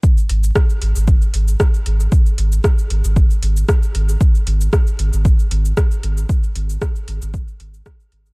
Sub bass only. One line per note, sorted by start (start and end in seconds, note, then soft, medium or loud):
0.30 0.50 G#1 loud
0.82 0.93 G#1 medium
0.96 1.16 G#1 medium
1.34 1.55 G#1 medium
1.86 2.07 G#1 medium
2.38 2.59 G#1 loud
2.90 3.01 G#1 medium
3.04 3.24 G#1 medium
3.42 3.63 G#1 medium
3.95 4.16 G#1 medium
4.47 4.68 G#1 loud
4.99 5.10 G#1 medium
5.13 5.33 G#1 medium
5.51 5.72 G#1 medium
6.03 6.24 G#1 medium
6.56 6.77 G#1 loud
7.08 7.19 G#1 medium
7.22 7.42 G#1 medium
7.60 7.81 G#1 medium
8.12 8.33 G#1 loud